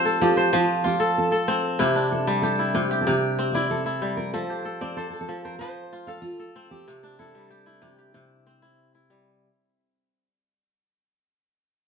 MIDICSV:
0, 0, Header, 1, 4, 480
1, 0, Start_track
1, 0, Tempo, 634249
1, 1365, Time_signature, 4, 2, 24, 8
1, 8983, End_track
2, 0, Start_track
2, 0, Title_t, "Steel-string acoustic guitar"
2, 0, Program_c, 0, 25
2, 0, Note_on_c, 0, 69, 87
2, 141, Note_off_c, 0, 69, 0
2, 164, Note_on_c, 0, 67, 83
2, 387, Note_off_c, 0, 67, 0
2, 413, Note_on_c, 0, 65, 80
2, 647, Note_on_c, 0, 67, 77
2, 656, Note_off_c, 0, 65, 0
2, 711, Note_off_c, 0, 67, 0
2, 893, Note_on_c, 0, 69, 86
2, 1225, Note_off_c, 0, 69, 0
2, 1367, Note_on_c, 0, 67, 93
2, 1602, Note_off_c, 0, 67, 0
2, 1605, Note_on_c, 0, 69, 84
2, 1821, Note_off_c, 0, 69, 0
2, 1831, Note_on_c, 0, 69, 83
2, 2073, Note_off_c, 0, 69, 0
2, 2076, Note_on_c, 0, 67, 89
2, 2274, Note_off_c, 0, 67, 0
2, 2279, Note_on_c, 0, 69, 61
2, 2324, Note_off_c, 0, 69, 0
2, 2327, Note_on_c, 0, 67, 92
2, 2660, Note_off_c, 0, 67, 0
2, 2663, Note_on_c, 0, 76, 61
2, 2682, Note_on_c, 0, 74, 85
2, 2689, Note_off_c, 0, 76, 0
2, 2795, Note_off_c, 0, 74, 0
2, 2804, Note_on_c, 0, 69, 85
2, 3151, Note_off_c, 0, 69, 0
2, 3154, Note_on_c, 0, 70, 92
2, 3283, Note_off_c, 0, 70, 0
2, 3286, Note_on_c, 0, 72, 102
2, 3640, Note_on_c, 0, 74, 96
2, 3657, Note_off_c, 0, 72, 0
2, 3758, Note_on_c, 0, 69, 100
2, 3766, Note_off_c, 0, 74, 0
2, 3851, Note_off_c, 0, 69, 0
2, 3940, Note_on_c, 0, 69, 92
2, 4122, Note_off_c, 0, 69, 0
2, 4125, Note_on_c, 0, 70, 86
2, 4226, Note_off_c, 0, 70, 0
2, 4229, Note_on_c, 0, 72, 97
2, 4594, Note_on_c, 0, 77, 90
2, 4609, Note_off_c, 0, 72, 0
2, 4705, Note_on_c, 0, 65, 103
2, 4711, Note_off_c, 0, 77, 0
2, 5050, Note_off_c, 0, 65, 0
2, 5078, Note_on_c, 0, 67, 103
2, 5441, Note_off_c, 0, 67, 0
2, 5444, Note_on_c, 0, 69, 85
2, 5919, Note_off_c, 0, 69, 0
2, 5922, Note_on_c, 0, 67, 87
2, 6160, Note_on_c, 0, 64, 78
2, 6171, Note_off_c, 0, 67, 0
2, 6853, Note_off_c, 0, 64, 0
2, 8983, End_track
3, 0, Start_track
3, 0, Title_t, "Kora"
3, 0, Program_c, 1, 46
3, 0, Note_on_c, 1, 53, 86
3, 0, Note_on_c, 1, 60, 76
3, 0, Note_on_c, 1, 67, 64
3, 0, Note_on_c, 1, 72, 72
3, 41, Note_on_c, 1, 69, 62
3, 154, Note_off_c, 1, 53, 0
3, 163, Note_on_c, 1, 53, 80
3, 278, Note_off_c, 1, 72, 0
3, 281, Note_on_c, 1, 72, 67
3, 391, Note_off_c, 1, 53, 0
3, 400, Note_on_c, 1, 53, 87
3, 637, Note_off_c, 1, 67, 0
3, 637, Note_on_c, 1, 65, 70
3, 753, Note_off_c, 1, 69, 0
3, 756, Note_on_c, 1, 69, 81
3, 995, Note_off_c, 1, 69, 0
3, 998, Note_on_c, 1, 69, 65
3, 1117, Note_off_c, 1, 60, 0
3, 1120, Note_on_c, 1, 60, 85
3, 1179, Note_off_c, 1, 72, 0
3, 1355, Note_on_c, 1, 48, 83
3, 1359, Note_on_c, 1, 64, 71
3, 1403, Note_off_c, 1, 53, 0
3, 1405, Note_off_c, 1, 65, 0
3, 1480, Note_on_c, 1, 62, 63
3, 1721, Note_on_c, 1, 55, 74
3, 1842, Note_on_c, 1, 67, 67
3, 1957, Note_off_c, 1, 64, 0
3, 1960, Note_on_c, 1, 64, 57
3, 1995, Note_off_c, 1, 69, 0
3, 2071, Note_off_c, 1, 48, 0
3, 2080, Note_on_c, 1, 48, 77
3, 2198, Note_off_c, 1, 67, 0
3, 2201, Note_on_c, 1, 67, 64
3, 2313, Note_off_c, 1, 48, 0
3, 2322, Note_on_c, 1, 48, 88
3, 2482, Note_off_c, 1, 60, 0
3, 2563, Note_on_c, 1, 60, 71
3, 2682, Note_off_c, 1, 64, 0
3, 2685, Note_on_c, 1, 64, 83
3, 2751, Note_off_c, 1, 62, 0
3, 2917, Note_off_c, 1, 64, 0
3, 2920, Note_on_c, 1, 64, 62
3, 3032, Note_off_c, 1, 55, 0
3, 3041, Note_on_c, 1, 55, 77
3, 3270, Note_off_c, 1, 67, 0
3, 3282, Note_on_c, 1, 53, 80
3, 3282, Note_on_c, 1, 69, 69
3, 3323, Note_off_c, 1, 48, 0
3, 3323, Note_off_c, 1, 55, 0
3, 3328, Note_off_c, 1, 64, 0
3, 3404, Note_on_c, 1, 67, 64
3, 3517, Note_off_c, 1, 69, 0
3, 3520, Note_on_c, 1, 69, 71
3, 3640, Note_off_c, 1, 60, 0
3, 3643, Note_on_c, 1, 60, 76
3, 3763, Note_on_c, 1, 72, 71
3, 3883, Note_off_c, 1, 69, 0
3, 3886, Note_on_c, 1, 69, 63
3, 3991, Note_off_c, 1, 53, 0
3, 4000, Note_on_c, 1, 53, 80
3, 4119, Note_off_c, 1, 72, 0
3, 4122, Note_on_c, 1, 72, 59
3, 4236, Note_off_c, 1, 53, 0
3, 4245, Note_on_c, 1, 53, 83
3, 4473, Note_off_c, 1, 67, 0
3, 4485, Note_on_c, 1, 65, 71
3, 4598, Note_off_c, 1, 69, 0
3, 4601, Note_on_c, 1, 69, 79
3, 4837, Note_off_c, 1, 69, 0
3, 4840, Note_on_c, 1, 69, 62
3, 4960, Note_off_c, 1, 60, 0
3, 4963, Note_on_c, 1, 60, 87
3, 5021, Note_off_c, 1, 72, 0
3, 5204, Note_on_c, 1, 48, 83
3, 5244, Note_off_c, 1, 53, 0
3, 5323, Note_on_c, 1, 62, 68
3, 5441, Note_on_c, 1, 64, 62
3, 5486, Note_off_c, 1, 65, 0
3, 5562, Note_on_c, 1, 55, 70
3, 5679, Note_on_c, 1, 67, 68
3, 5795, Note_off_c, 1, 64, 0
3, 5798, Note_on_c, 1, 64, 68
3, 5837, Note_off_c, 1, 69, 0
3, 5907, Note_off_c, 1, 48, 0
3, 5916, Note_on_c, 1, 48, 81
3, 6041, Note_off_c, 1, 67, 0
3, 6044, Note_on_c, 1, 67, 62
3, 6154, Note_off_c, 1, 48, 0
3, 6163, Note_on_c, 1, 48, 85
3, 6325, Note_off_c, 1, 60, 0
3, 6407, Note_on_c, 1, 60, 73
3, 6522, Note_off_c, 1, 64, 0
3, 6525, Note_on_c, 1, 64, 82
3, 6594, Note_off_c, 1, 62, 0
3, 6768, Note_off_c, 1, 64, 0
3, 6771, Note_on_c, 1, 64, 63
3, 6879, Note_off_c, 1, 55, 0
3, 6888, Note_on_c, 1, 55, 81
3, 7113, Note_off_c, 1, 67, 0
3, 7164, Note_off_c, 1, 48, 0
3, 7164, Note_off_c, 1, 55, 0
3, 7769, Note_off_c, 1, 60, 0
3, 7957, Note_off_c, 1, 64, 0
3, 8983, End_track
4, 0, Start_track
4, 0, Title_t, "Drums"
4, 291, Note_on_c, 9, 82, 52
4, 367, Note_off_c, 9, 82, 0
4, 652, Note_on_c, 9, 82, 64
4, 728, Note_off_c, 9, 82, 0
4, 1013, Note_on_c, 9, 82, 49
4, 1089, Note_off_c, 9, 82, 0
4, 1372, Note_on_c, 9, 82, 69
4, 1447, Note_off_c, 9, 82, 0
4, 1732, Note_on_c, 9, 82, 22
4, 1808, Note_off_c, 9, 82, 0
4, 1849, Note_on_c, 9, 82, 73
4, 1925, Note_off_c, 9, 82, 0
4, 2209, Note_on_c, 9, 82, 59
4, 2285, Note_off_c, 9, 82, 0
4, 2568, Note_on_c, 9, 82, 79
4, 2644, Note_off_c, 9, 82, 0
4, 2929, Note_on_c, 9, 82, 61
4, 3005, Note_off_c, 9, 82, 0
4, 3286, Note_on_c, 9, 82, 76
4, 3362, Note_off_c, 9, 82, 0
4, 3646, Note_on_c, 9, 82, 25
4, 3722, Note_off_c, 9, 82, 0
4, 3766, Note_on_c, 9, 82, 75
4, 3842, Note_off_c, 9, 82, 0
4, 4125, Note_on_c, 9, 82, 64
4, 4201, Note_off_c, 9, 82, 0
4, 4487, Note_on_c, 9, 82, 74
4, 4562, Note_off_c, 9, 82, 0
4, 4850, Note_on_c, 9, 82, 59
4, 4926, Note_off_c, 9, 82, 0
4, 5214, Note_on_c, 9, 82, 76
4, 5290, Note_off_c, 9, 82, 0
4, 5570, Note_on_c, 9, 82, 25
4, 5646, Note_off_c, 9, 82, 0
4, 5687, Note_on_c, 9, 82, 76
4, 5763, Note_off_c, 9, 82, 0
4, 5810, Note_on_c, 9, 82, 20
4, 5886, Note_off_c, 9, 82, 0
4, 6406, Note_on_c, 9, 82, 75
4, 6482, Note_off_c, 9, 82, 0
4, 6762, Note_on_c, 9, 82, 51
4, 6838, Note_off_c, 9, 82, 0
4, 8983, End_track
0, 0, End_of_file